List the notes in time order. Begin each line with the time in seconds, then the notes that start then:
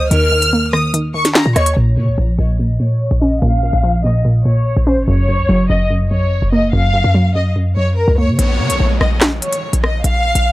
Already playing: C5 D#5
0.01 C#2
0.11 D#2 D#3 A#4 F6, closed hi-hat
0.32 D#3
0.42 closed hi-hat
0.53 A#3
0.73 D#3 D#6, cross-stick
0.94 D#3, closed hi-hat
1.14 D#3 C#6
1.25 snare, closed hi-hat
1.35 A#5, snare, clap, closed hi-hat
1.46 A#2
1.56 D#2 C#5 D#5 C#6, cross-stick, closed hi-hat
1.66 closed hi-hat
1.77 A#1 A#2 C#5
1.97 A#2 C#3
2.08 A#1
2.18 A#1 F3
2.39 A#1 A#2 D#5
2.59 A#2
2.80 A#2 C#5
3.11 A#1
3.21 C#4 D#5
3.42 A#1 A#2 F5
3.63 A#2
3.73 A#1
3.83 F3
4.04 A#2 D#5
4.25 A#2
4.45 A#2 C#5
4.77 A#1
4.87 C#4 C5
4.97 G#1
5.07 F#1 F#2 C#5
5.28 F#2
5.39 C#2
5.49 F#1 F#3
5.70 F#1 F#2 D#5
5.91 F#2
6.11 A#1 F#2 C#5
6.27 F#1
6.42 F#1
6.52 A#3 D#5
6.63 F1
6.73 F#1 F#2 F5
6.94 F#2
7.04 F#2
7.15 F#3
7.35 F#2 D#5
7.56 F#2
7.77 F#2 C#5
7.97 A#4
8.08 C#2
8.18 A#3 C#5
8.28 C#3
8.39 A#1 C#5, closed hi-hat, downlifter
8.59 C#3
8.70 A#1, closed hi-hat
8.80 A#1
9.01 A#1 D#5, cross-stick
9.21 snare, clap, closed hi-hat
9.42 C#5, closed hi-hat
9.53 closed hi-hat
9.73 A#1, closed hi-hat
9.83 D#5, cross-stick
10.04 A#1 F5, closed hi-hat
10.35 A#1, closed hi-hat